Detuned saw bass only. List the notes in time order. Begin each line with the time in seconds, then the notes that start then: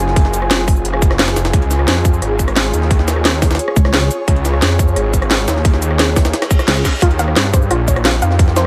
0.00 F#1
0.85 F#1
1.36 F1
1.53 C#2
1.88 F2
2.22 G#1
2.74 D#2
4.28 C#2
4.62 F2
4.96 G#1
5.48 D#2
7.02 D#2
7.36 G2
7.71 A#1
8.22 F2